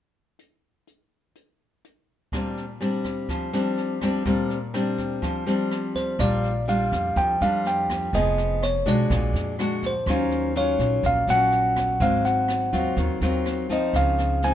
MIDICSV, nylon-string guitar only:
0, 0, Header, 1, 2, 480
1, 0, Start_track
1, 0, Key_signature, -2, "major"
1, 0, Tempo, 483871
1, 381, Time_signature, 4, 2, 24, 8
1, 14424, End_track
2, 0, Start_track
2, 0, Title_t, "Nylon-string guitar"
2, 0, Program_c, 0, 24
2, 2309, Note_on_c, 0, 46, 54
2, 2313, Note_on_c, 0, 55, 42
2, 2314, Note_on_c, 0, 60, 42
2, 2322, Note_on_c, 0, 62, 51
2, 2616, Note_off_c, 0, 55, 0
2, 2618, Note_off_c, 0, 60, 0
2, 2620, Note_off_c, 0, 62, 0
2, 2783, Note_on_c, 0, 55, 49
2, 2791, Note_on_c, 0, 60, 50
2, 2794, Note_on_c, 0, 62, 54
2, 3243, Note_off_c, 0, 46, 0
2, 3269, Note_on_c, 0, 53, 59
2, 3466, Note_off_c, 0, 55, 0
2, 3470, Note_off_c, 0, 60, 0
2, 3470, Note_off_c, 0, 62, 0
2, 3506, Note_on_c, 0, 55, 54
2, 3506, Note_on_c, 0, 60, 59
2, 3512, Note_on_c, 0, 62, 61
2, 3947, Note_off_c, 0, 55, 0
2, 3947, Note_off_c, 0, 60, 0
2, 3950, Note_off_c, 0, 62, 0
2, 3986, Note_on_c, 0, 55, 55
2, 3997, Note_on_c, 0, 62, 57
2, 3998, Note_on_c, 0, 60, 60
2, 4187, Note_off_c, 0, 55, 0
2, 4192, Note_off_c, 0, 62, 0
2, 4193, Note_off_c, 0, 60, 0
2, 4203, Note_off_c, 0, 53, 0
2, 4221, Note_on_c, 0, 55, 46
2, 4224, Note_on_c, 0, 46, 61
2, 4232, Note_on_c, 0, 60, 47
2, 4233, Note_on_c, 0, 62, 55
2, 4532, Note_off_c, 0, 55, 0
2, 4536, Note_off_c, 0, 60, 0
2, 4538, Note_off_c, 0, 62, 0
2, 4701, Note_on_c, 0, 55, 50
2, 4705, Note_on_c, 0, 60, 54
2, 4712, Note_on_c, 0, 62, 56
2, 5162, Note_off_c, 0, 46, 0
2, 5179, Note_on_c, 0, 53, 59
2, 5386, Note_off_c, 0, 55, 0
2, 5386, Note_off_c, 0, 60, 0
2, 5388, Note_off_c, 0, 62, 0
2, 5421, Note_on_c, 0, 55, 56
2, 5426, Note_on_c, 0, 60, 59
2, 5429, Note_on_c, 0, 62, 58
2, 6105, Note_off_c, 0, 55, 0
2, 6108, Note_off_c, 0, 60, 0
2, 6108, Note_off_c, 0, 62, 0
2, 6118, Note_off_c, 0, 53, 0
2, 6142, Note_on_c, 0, 46, 53
2, 6147, Note_on_c, 0, 55, 55
2, 6148, Note_on_c, 0, 62, 47
2, 6154, Note_on_c, 0, 65, 55
2, 6455, Note_off_c, 0, 62, 0
2, 6456, Note_off_c, 0, 55, 0
2, 6459, Note_off_c, 0, 65, 0
2, 6625, Note_on_c, 0, 55, 51
2, 6629, Note_on_c, 0, 62, 55
2, 6632, Note_on_c, 0, 65, 58
2, 7080, Note_off_c, 0, 46, 0
2, 7104, Note_on_c, 0, 53, 51
2, 7307, Note_off_c, 0, 55, 0
2, 7309, Note_off_c, 0, 62, 0
2, 7311, Note_off_c, 0, 65, 0
2, 7356, Note_on_c, 0, 55, 59
2, 7362, Note_on_c, 0, 62, 60
2, 7363, Note_on_c, 0, 65, 61
2, 8033, Note_off_c, 0, 55, 0
2, 8034, Note_off_c, 0, 62, 0
2, 8036, Note_off_c, 0, 65, 0
2, 8041, Note_off_c, 0, 53, 0
2, 8073, Note_on_c, 0, 53, 51
2, 8077, Note_on_c, 0, 59, 53
2, 8077, Note_on_c, 0, 63, 50
2, 8084, Note_on_c, 0, 68, 55
2, 8547, Note_off_c, 0, 63, 0
2, 8548, Note_off_c, 0, 59, 0
2, 8552, Note_off_c, 0, 68, 0
2, 8789, Note_on_c, 0, 56, 54
2, 8793, Note_on_c, 0, 62, 58
2, 8798, Note_on_c, 0, 66, 61
2, 9006, Note_off_c, 0, 53, 0
2, 9035, Note_on_c, 0, 46, 53
2, 9469, Note_off_c, 0, 56, 0
2, 9470, Note_off_c, 0, 62, 0
2, 9474, Note_off_c, 0, 66, 0
2, 9516, Note_on_c, 0, 56, 46
2, 9522, Note_on_c, 0, 62, 51
2, 9526, Note_on_c, 0, 66, 59
2, 9820, Note_off_c, 0, 56, 0
2, 9822, Note_off_c, 0, 62, 0
2, 9825, Note_off_c, 0, 66, 0
2, 9966, Note_off_c, 0, 46, 0
2, 10004, Note_on_c, 0, 54, 45
2, 10005, Note_on_c, 0, 51, 56
2, 10011, Note_on_c, 0, 61, 60
2, 10017, Note_on_c, 0, 65, 62
2, 10436, Note_off_c, 0, 54, 0
2, 10441, Note_off_c, 0, 61, 0
2, 10442, Note_off_c, 0, 65, 0
2, 10473, Note_on_c, 0, 54, 53
2, 10478, Note_on_c, 0, 61, 53
2, 10481, Note_on_c, 0, 65, 50
2, 10931, Note_off_c, 0, 51, 0
2, 10955, Note_on_c, 0, 46, 47
2, 11151, Note_off_c, 0, 54, 0
2, 11152, Note_off_c, 0, 61, 0
2, 11155, Note_off_c, 0, 65, 0
2, 11195, Note_on_c, 0, 54, 55
2, 11203, Note_on_c, 0, 61, 58
2, 11873, Note_off_c, 0, 54, 0
2, 11874, Note_off_c, 0, 61, 0
2, 11886, Note_off_c, 0, 46, 0
2, 11903, Note_on_c, 0, 44, 53
2, 11906, Note_on_c, 0, 54, 46
2, 11916, Note_on_c, 0, 60, 49
2, 12587, Note_off_c, 0, 54, 0
2, 12592, Note_off_c, 0, 60, 0
2, 12626, Note_on_c, 0, 54, 51
2, 12629, Note_on_c, 0, 60, 52
2, 12632, Note_on_c, 0, 65, 57
2, 12840, Note_off_c, 0, 44, 0
2, 12873, Note_on_c, 0, 51, 51
2, 13066, Note_off_c, 0, 60, 0
2, 13068, Note_off_c, 0, 54, 0
2, 13070, Note_off_c, 0, 65, 0
2, 13118, Note_on_c, 0, 54, 51
2, 13120, Note_on_c, 0, 60, 59
2, 13124, Note_on_c, 0, 65, 69
2, 13552, Note_off_c, 0, 60, 0
2, 13553, Note_off_c, 0, 54, 0
2, 13556, Note_off_c, 0, 65, 0
2, 13585, Note_on_c, 0, 53, 54
2, 13591, Note_on_c, 0, 60, 59
2, 13596, Note_on_c, 0, 63, 58
2, 13804, Note_off_c, 0, 51, 0
2, 13840, Note_on_c, 0, 49, 47
2, 14266, Note_off_c, 0, 53, 0
2, 14269, Note_off_c, 0, 60, 0
2, 14271, Note_off_c, 0, 63, 0
2, 14321, Note_on_c, 0, 53, 51
2, 14329, Note_on_c, 0, 60, 54
2, 14334, Note_on_c, 0, 63, 48
2, 14424, Note_off_c, 0, 49, 0
2, 14424, Note_off_c, 0, 53, 0
2, 14424, Note_off_c, 0, 60, 0
2, 14424, Note_off_c, 0, 63, 0
2, 14424, End_track
0, 0, End_of_file